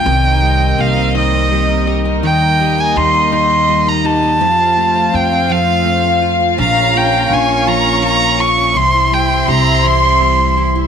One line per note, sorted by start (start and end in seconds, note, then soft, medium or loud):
0.00 0.13 G#3 medium
0.00 0.13 C#4 medium
0.00 0.13 F4 medium
0.00 4.37 A#4 medium
0.00 0.82 G5 loud
0.05 0.74 C2 loud
0.05 2.23 C3 medium
0.05 1.15 D#3 medium
0.05 2.21 G3 medium
0.05 2.21 C4 medium
0.05 4.36 D#4 medium
0.05 2.21 D#5 medium
0.24 0.59 C4 medium
0.42 1.51 G3 medium
0.42 0.78 G4 medium
0.60 0.95 C4 medium
0.78 2.24 C2 medium
0.78 2.96 A#3 medium
0.78 1.51 G4 medium
0.78 1.16 F5 medium
0.97 1.32 C4 medium
1.15 2.23 D#3 medium
1.15 1.87 D#4 medium
1.15 1.93 D#5 medium
1.33 1.68 C4 medium
1.51 2.60 G3 medium
1.51 1.87 G4 medium
1.87 3.32 D#4 medium
1.87 2.60 G4 medium
2.05 2.31 C4 medium
2.23 2.92 D#2 loud
2.23 3.31 D#3 medium
2.23 4.40 D#3 medium
2.23 4.38 G3 medium
2.23 4.38 A#3 medium
2.23 4.38 D#5 medium
2.23 2.82 G5 loud
2.42 2.77 D#4 medium
2.60 3.67 G3 medium
2.60 2.95 G4 medium
2.78 3.13 D#4 medium
2.78 2.99 G#5 medium
2.96 4.41 D#2 loud
2.96 4.48 A#3 medium
2.96 3.67 G4 medium
2.96 3.33 C6 loud
3.14 3.49 D#4 medium
3.32 4.41 D#3 medium
3.32 4.03 D#4 medium
3.32 3.90 C6 loud
3.50 3.85 D#4 medium
3.68 4.48 G3 medium
3.68 4.04 G4 medium
3.87 4.21 D#4 medium
3.87 4.07 A#5 medium
4.04 4.48 D#4 medium
4.04 4.48 G4 medium
4.04 5.17 A5 loud
4.23 4.48 D#4 medium
4.40 5.09 F2 loud
4.40 7.91 F3 medium
4.40 5.49 F3 medium
4.40 6.56 A3 medium
4.40 6.56 C4 medium
4.40 8.72 F4 medium
4.40 6.56 C5 medium
4.40 8.72 F5 loud
4.59 4.94 C4 medium
4.77 5.84 A3 medium
4.77 5.13 F4 medium
4.95 5.30 C4 medium
5.13 6.54 F2 medium
5.13 6.65 C4 medium
5.13 5.85 F4 medium
5.13 5.53 G5 medium
5.32 5.67 C4 medium
5.49 6.58 F3 medium
5.49 6.21 F4 medium
5.49 6.32 F5 loud
5.68 6.03 C4 medium
5.85 6.65 A3 medium
5.85 6.22 F4 medium
6.04 6.39 C4 medium
6.22 7.67 F4 medium
6.22 6.94 F4 medium
6.40 6.66 C4 medium
6.58 7.27 A#1 loud
6.58 8.75 A#2 medium
6.58 7.66 F3 medium
6.58 8.73 A#3 medium
6.58 8.73 C#4 medium
6.58 8.74 C#5 medium
6.58 6.98 F5 loud
6.58 7.27 A#5 loud
6.76 7.12 C#4 medium
6.94 8.02 A#3 medium
6.94 7.30 F4 medium
6.94 7.35 G5 loud
7.13 7.48 C#4 medium
7.30 8.76 A#1 medium
7.30 8.83 C#4 medium
7.30 8.02 F4 medium
7.30 7.69 G#5 loud
7.30 8.76 C#6 loud
7.49 7.84 C#4 medium
7.67 8.76 F3 medium
7.67 8.37 F4 medium
7.67 8.04 A#5 loud
7.85 8.20 C#4 medium
8.03 8.83 A#3 medium
8.03 8.38 F4 medium
8.03 8.42 A#5 loud
8.22 8.56 C#4 medium
8.39 8.83 F4 medium
8.39 8.78 C#6 loud
8.57 8.83 C#4 medium
8.75 9.44 C2 loud
8.75 10.87 C3 medium
8.75 9.84 E3 medium
8.75 10.87 G3 medium
8.75 10.87 C4 medium
8.75 10.87 E4 medium
8.75 10.87 C5 medium
8.75 10.87 E5 medium
8.75 10.87 C6 loud
8.75 9.15 C6 loud
8.94 9.29 E4 medium
9.12 10.20 G3 medium
9.12 9.47 G4 medium
9.12 9.49 G5 loud
9.30 9.65 E4 medium
9.48 10.87 C2 loud
9.48 10.87 C4 medium
9.48 10.20 G4 medium
9.48 9.88 A#5 loud
9.66 10.02 E4 medium
9.84 10.87 E3 medium
9.84 10.56 E4 medium
9.84 10.67 C6 loud
10.03 10.38 E4 medium
10.21 10.87 G3 medium
10.21 10.56 G4 medium
10.39 10.74 E4 medium
10.57 10.87 E4 medium
10.57 10.87 G4 medium
10.75 10.87 E4 medium